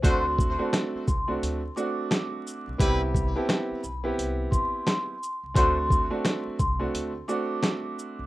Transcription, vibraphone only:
X:1
M:4/4
L:1/16
Q:"Swing 16ths" 1/4=87
K:Dmix
V:1 name="Vibraphone"
c'3 a z2 c' z3 d'6 | b3 a z2 b z3 c'6 | c'3 a z2 c' z3 d'6 |]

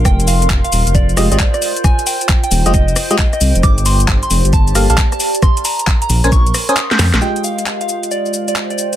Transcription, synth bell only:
X:1
M:4/4
L:1/16
Q:"Swing 16ths" 1/4=134
K:Fdor
V:1 name="Synth bell"
g z f2 z f2 z d2 z d z d2 z | a z g2 z g2 z e2 z e z e2 z | d' z c'2 z c'2 z =a2 z a z a2 z | c' z b2 z b2 z _d'2 z e' z g'2 z |
g z f2 z f2 z d2 z d z d2 z |]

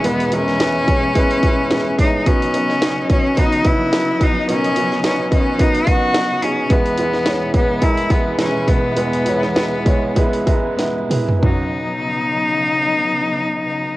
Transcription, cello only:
X:1
M:4/4
L:1/8
Q:"Swing 16ths" 1/4=108
K:B
V:1 name="Cello"
B, C6 D | C3 C D E2 D | C2 C C D F2 C | B,3 B, E B, C B,- |
B,6 z2 | D8 |]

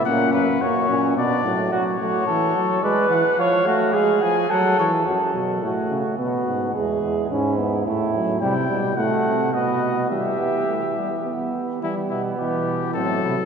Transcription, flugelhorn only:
X:1
M:3/4
L:1/8
Q:1/4=107
K:F#phr
V:1 name="Flugelhorn"
C2 F2 D2 | F F A2 B2 | c F ^G2 A2 | A2 F2 F2 |
^G2 E2 E2 | [K:Em] E2 F2 F2 | G4- G z | B,4 C E |]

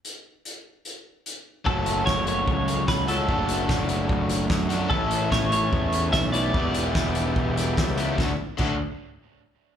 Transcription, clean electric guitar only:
X:1
M:4/4
L:1/8
Q:1/4=147
K:D
V:1 name="Clean electric guitar"
z8 | A2 c c3 B A- | A2 z6 | A2 c c3 e d- |
d2 z6 | z8 |]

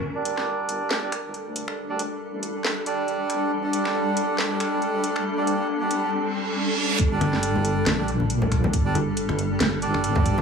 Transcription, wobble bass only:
X:1
M:4/4
L:1/8
Q:"Swing 16ths" 1/4=138
K:Cdor
V:1 name="Wobble bass" clef=bass
G,,,6 D,,2- | D,,2 A,,,2 z3 G,,, | G,,,6 D,,2- | D,,2 A,,,2 z4 |
G,,,4 B,,,4 | G,,,4 G,,,4 |]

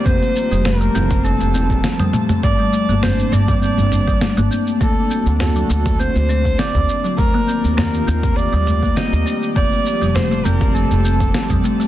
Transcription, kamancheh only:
X:1
M:4/4
L:1/16
Q:"Swing 16ths" 1/4=101
K:Gm
V:1 name="Kamancheh"
c4 B4 A6 z2 | d4 c2 d2 d6 z2 | A4 A4 c4 d3 z | B4 B4 d4 e3 z |
d4 c2 B2 A6 z2 |]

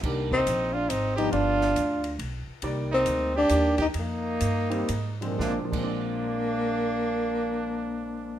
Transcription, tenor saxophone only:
X:1
M:3/4
L:1/8
Q:"Swing" 1/4=132
K:Bbmix
V:1 name="Tenor saxophone"
z C2 D C E | D4 z2 | z C2 D2 E | B,4- B, z |
B, B,4- B,- | B,6 |]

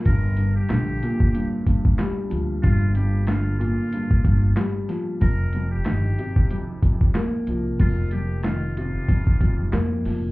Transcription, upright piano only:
X:1
M:4/4
L:1/8
Q:"Swing 16ths" 1/4=93
K:Gm
V:1 name="Upright piano" clef=bass
G,, G,, D, B,, G,, G,, G, F, | G,, G,, D, B,, G,, G,, G, F, | F,, F,, E, C, F,, F,, B, F, | F,, F,, E, C, F,, F,, B, F, |]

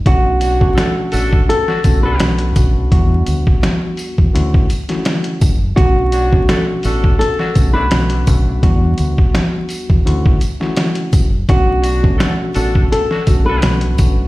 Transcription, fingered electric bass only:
X:1
M:4/4
L:1/16
Q:"Swing 16ths" 1/4=84
K:Bm
V:1 name="Fingered electric bass" clef=bass
B,,,4 z2 A,,,2 z2 B,,,2 B,,,2 B,,,2 | E,,2 D,, z4 E,, D,,2 z4 F,,,2 | B,,,4 z2 A,,,2 z2 B,,,2 B,,,2 B,,,2 | E,,2 D,, z4 E,, D,,2 z4 F,,,2 |
B,,,4 z2 A,,,2 z2 B,,,2 B,,,2 B,,,2 |]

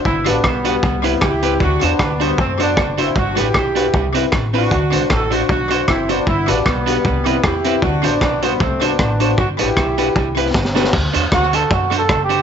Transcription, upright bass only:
X:1
M:4/4
L:1/8
Q:"Swing" 1/4=154
K:Dmix
V:1 name="Upright bass" clef=bass
G,,, A,,, B,,,2 C,,2 ^C,,2 | D,, E,, D,,2 F,,2 F,,,2 | G,,, A,,, B,,,2 C,,2 A,,,2 | D,, C,, A,,,2 B,,,2 F,,,2 |
G,,, A,,, B,,,2 C,,2 E,,2 | D,, A,,, B,,,2 C,,2 A,,,2 | G,,, A,,, B,,,2 C,,2 G,,,2 | D,, E,, D,,2 F,,2 F,,,2 |]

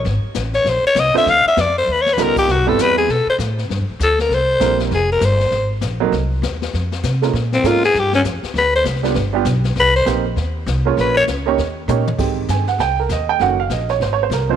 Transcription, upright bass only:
X:1
M:4/4
L:1/8
Q:"Swing" 1/4=198
K:Ab
V:1 name="Upright bass" clef=bass
A,,, z =A,,,2 B,,, z C,, z | =D,, z F,,2 ^D,,2 _D,, z | (3C,, =B,,, G,,, =E,,2 =B,, z =A,,2 | (3G,, F,, =D,, D,,2 C,,2 B,,,2 |
F,,,2 G,,,2 A,,,2 B,,,2 | C,,2 E,,2 F,,2 C,2 | B,,2 A,,2 G,,2 F,, z | =D,,2 C,,2 G,,,2 =B,,,2 |
C,,2 B,,,2 E,,2 C,,2 | B,,,2 D,,2 E,,2 B,,2 | A,,2 G,,2 C,,2 E,,2 | _G,,,2 B,,,2 A,,,2 C,,2 |]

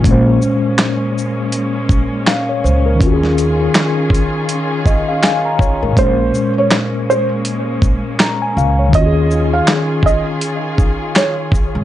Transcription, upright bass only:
X:1
M:4/4
L:1/16
Q:"Swing 16ths" 1/4=81
K:Bbm
V:1 name="Upright bass" clef=bass
B,,,2 z12 D,,2 | E,,4 z8 z3 A,,, | B,,,2 z12 D,,2 | E,,4 z8 z3 A,,, |]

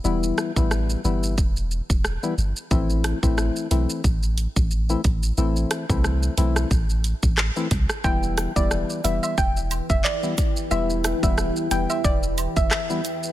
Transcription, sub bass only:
X:1
M:4/4
L:1/16
Q:"Swing 16ths" 1/4=90
K:Em
V:1 name="Sub bass" clef=bass
E,,,2 z A,,,3 G,,,2 E,,,3 E,,,2 z G,,, z | A,,,3 A,,,2 z B,,, z A,,,3 A,,,3 A,,,2 | A,,,2 z C,,3 B,,,2 A,,,3 A,,,2 z C,, z | E,,,3 E,,,2 z =F,,, z E,,,3 F,,, z4 |
E,,,3 E,,,2 z =F,,, z E,,,3 F,,, z4 |]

